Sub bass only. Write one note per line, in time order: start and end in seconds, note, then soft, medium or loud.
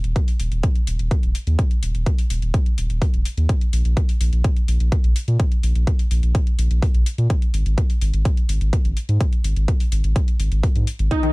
0.04 0.14 D#1 medium
0.40 0.49 D#1 medium
0.52 0.61 D#1 medium
0.87 0.97 D#1 medium
0.99 1.09 D#1 medium
1.23 1.33 D#1 medium
1.47 1.56 D#2 medium
1.83 1.92 D#1 medium
1.95 2.04 D#1 medium
2.30 2.40 D#1 medium
2.42 2.52 D#1 medium
2.78 2.87 D#1 medium
2.90 2.99 D#1 medium
3.14 3.23 D#1 medium
3.37 3.47 D#2 medium
3.73 3.83 A#1 medium
3.85 3.95 A#1 medium
4.21 4.30 A#1 medium
4.33 4.42 A#1 medium
4.68 4.78 A#1 medium
4.80 4.90 A#1 medium
5.04 5.14 A#1 medium
5.28 5.37 A#2 medium
5.63 5.73 A#1 medium
5.75 5.85 A#1 medium
6.11 6.21 A#1 medium
6.23 6.33 A#1 medium
6.59 6.68 A#1 medium
6.71 6.80 A#1 medium
6.94 7.04 A#1 medium
7.18 7.28 A#2 medium
7.54 7.64 G#1 loud
7.66 7.75 G#1 medium
8.02 8.11 G#1 medium
8.14 8.23 G#1 medium
8.49 8.59 G#1 medium
8.61 8.71 G#1 medium
8.85 8.94 G#1 medium
9.09 9.18 G#2 medium
9.44 9.54 G#1 medium
9.56 9.66 G#1 medium
9.92 10.02 G#1 medium
10.04 10.14 G#1 medium
10.40 10.49 G#1 medium
10.52 10.61 G#1 medium
10.76 10.85 G#2 medium
10.99 11.09 G#1 medium